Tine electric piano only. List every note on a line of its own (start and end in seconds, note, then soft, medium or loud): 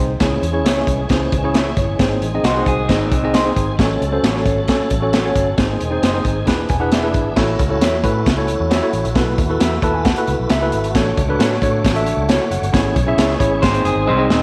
0.00 0.11 C4 medium
0.00 0.11 D#4 medium
0.00 0.11 G#4 medium
0.00 0.11 C5 medium
0.20 0.44 C#4 medium
0.20 0.45 E4 medium
0.20 0.45 G#4 medium
0.20 0.45 C#5 medium
0.52 0.70 C#4 medium
0.52 0.69 E4 medium
0.52 0.70 G#4 medium
0.52 0.70 C#5 medium
0.75 1.00 C#4 medium
0.75 1.01 E4 medium
0.75 1.01 G#4 medium
0.75 1.01 C#5 medium
1.10 1.34 C#4 medium
1.10 1.34 E4 medium
1.10 1.35 G#4 medium
1.10 1.35 C5 medium
1.43 1.60 C#4 medium
1.43 1.55 E4 medium
1.43 1.55 G#4 medium
1.43 1.55 C#5 medium
1.56 1.77 G#4 medium
1.56 1.76 E5 medium
1.78 2.20 E4 soft
1.78 2.20 C#5 medium
2.01 2.24 C4 medium
2.01 2.24 D#4 medium
2.01 2.24 G#4 medium
2.01 2.25 C5 medium
2.34 2.50 C4 medium
2.34 2.50 D#4 medium
2.34 2.50 G#4 medium
2.34 2.50 D#5 medium
2.57 2.80 C4 medium
2.57 2.80 D#4 medium
2.57 2.81 G#4 medium
2.57 2.81 C5 medium
2.90 3.14 C4 medium
2.90 3.14 D#4 medium
2.90 3.14 G#4 medium
2.90 3.14 D#5 medium
3.23 3.39 C4 medium
3.23 3.39 D#4 medium
3.23 3.40 G#4 medium
3.23 3.40 D#5 loud
3.35 3.76 C6 medium
3.45 3.69 C4 medium
3.45 3.70 D#4 medium
3.45 3.70 G#4 medium
3.45 3.69 C5 medium
3.79 4.03 C#4 medium
3.79 4.03 F#4 medium
3.79 4.04 A4 medium
3.79 4.04 C#5 medium
4.12 4.28 C#4 medium
4.12 4.29 F#4 medium
4.12 4.29 A4 medium
4.12 4.29 C5 medium
4.35 4.59 C#4 medium
4.35 4.59 F#4 medium
4.35 4.59 A4 medium
4.35 4.59 C#5 medium
4.69 4.93 C#4 medium
4.69 4.93 F#4 medium
4.69 4.93 A4 medium
4.69 4.93 C#5 medium
5.02 5.18 C#4 medium
5.02 5.18 F#4 medium
5.02 5.18 A4 medium
5.02 5.19 C#5 medium
5.24 5.49 C#4 medium
5.24 5.49 F#4 medium
5.24 5.49 A4 medium
5.24 5.49 C#5 medium
5.58 5.82 C4 medium
5.58 5.82 D#4 medium
5.58 5.82 G#4 medium
5.58 5.83 C5 medium
5.91 6.07 C4 medium
5.91 6.07 D#4 medium
5.91 6.08 G#4 medium
5.91 6.08 C5 medium
6.13 6.38 C4 medium
6.13 6.38 D#4 medium
6.13 6.38 G#4 medium
6.13 6.38 C5 medium
6.46 6.71 D4 medium
6.46 6.72 E4 medium
6.46 6.71 G#4 medium
6.46 6.72 B4 medium
6.69 6.80 G#5 medium
6.80 6.97 D4 medium
6.80 6.97 E4 medium
6.80 6.97 G#4 medium
6.80 6.97 B4 medium
6.80 6.91 F#5 medium
6.93 7.34 E5 medium
7.03 7.27 D4 medium
7.03 7.28 E4 medium
7.03 7.28 G#4 medium
7.03 7.28 B4 medium
7.36 7.61 E4 medium
7.36 7.61 F#4 medium
7.36 7.61 A4 medium
7.36 7.61 C#5 medium
7.69 7.94 E4 medium
7.69 7.95 F#4 medium
7.69 7.95 A4 medium
7.69 7.95 C#5 medium
8.04 8.28 E4 medium
8.04 8.29 F#4 medium
8.04 8.29 A4 medium
8.04 8.29 B4 medium
8.37 8.70 E4 medium
8.37 8.70 F#4 medium
8.37 8.70 A4 medium
8.37 8.70 C#5 medium
8.82 9.07 E4 medium
8.82 9.07 F#4 medium
8.82 9.07 A4 medium
8.82 9.07 C#5 medium
9.16 9.41 E4 medium
9.16 9.41 F#4 medium
9.16 9.41 A4 medium
9.16 9.41 B4 medium
9.50 9.74 E4 medium
9.50 9.74 F#4 medium
9.50 9.74 A4 medium
9.50 9.75 B4 medium
9.83 10.08 E4 medium
9.83 10.07 F#4 medium
9.83 10.08 A4 medium
9.83 10.08 B4 medium
9.83 9.94 A5 medium
9.94 10.05 G#5 medium
10.05 10.47 F#5 medium
10.17 10.50 E4 medium
10.17 10.50 F#4 medium
10.17 10.50 A4 medium
10.17 10.50 B4 medium
10.51 10.92 E5 medium
10.61 10.86 E4 medium
10.61 10.87 F#4 medium
10.61 10.87 A4 medium
10.61 10.87 B4 medium
10.95 11.20 D4 medium
10.95 11.20 F#4 medium
10.95 11.20 A4 medium
10.95 11.20 C#5 medium
11.29 11.53 D4 medium
11.29 11.54 F#4 medium
11.29 11.54 A4 medium
11.29 11.54 B4 medium
11.62 11.87 D4 medium
11.62 11.87 F#4 medium
11.62 11.87 A4 medium
11.62 11.87 C#5 loud
11.94 12.28 D4 medium
11.94 12.28 F#4 medium
11.94 12.28 A4 medium
11.94 12.29 E5 medium
12.29 12.51 E4 medium
12.29 12.50 C#5 medium
12.51 12.94 A4 medium
12.51 12.94 F#5 medium
12.73 12.98 C#4 medium
12.73 12.98 E4 medium
12.73 12.98 G#4 medium
12.73 12.98 C#5 loud
13.07 13.31 C#4 medium
13.07 13.32 E4 medium
13.07 13.32 G#4 medium
13.07 13.32 E5 loud
13.39 13.62 C#4 medium
13.39 13.63 E4 medium
13.39 13.63 G#4 medium
13.39 13.63 C#5 medium
13.73 14.06 C4 medium
13.73 14.06 D#4 medium
13.73 14.07 G#4 medium
13.73 14.07 C5 medium
14.17 14.42 C4 medium
14.17 14.43 D#4 medium
14.17 14.43 G#4 medium
14.17 14.43 D#5 loud